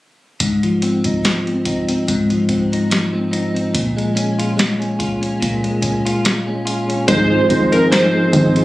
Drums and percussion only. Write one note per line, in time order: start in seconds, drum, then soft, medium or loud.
0.40 kick medium
0.40 closed hi-hat medium
0.63 closed hi-hat soft
0.82 closed hi-hat medium
1.04 kick medium
1.04 closed hi-hat soft
1.25 snare loud
1.25 closed hi-hat medium
1.47 closed hi-hat soft
1.65 kick medium
1.65 closed hi-hat medium
1.89 closed hi-hat soft
2.08 kick medium
2.08 closed hi-hat medium
2.30 closed hi-hat soft
2.49 kick medium
2.49 closed hi-hat medium
2.73 closed hi-hat soft
2.91 snare loud
2.91 closed hi-hat medium
3.33 closed hi-hat medium
3.56 closed hi-hat soft
3.75 kick medium
3.75 closed hi-hat medium
3.98 closed hi-hat soft
4.17 closed hi-hat medium
4.40 closed hi-hat soft
4.59 snare loud
4.59 closed hi-hat medium
4.82 closed hi-hat soft
5.00 kick medium
5.00 closed hi-hat medium
5.23 closed hi-hat soft
5.42 kick medium
5.42 closed hi-hat medium
5.64 closed hi-hat soft
5.82 kick medium
5.82 closed hi-hat medium
6.07 closed hi-hat soft
6.25 snare loud
6.25 closed hi-hat medium
6.67 closed hi-hat medium
6.90 closed hi-hat soft
7.08 kick loud
7.08 closed hi-hat medium
7.49 kick loud
7.49 closed hi-hat medium
7.73 closed hi-hat medium
7.92 snare loud
7.92 closed hi-hat medium
8.33 kick loud
8.33 closed hi-hat medium
8.56 closed hi-hat medium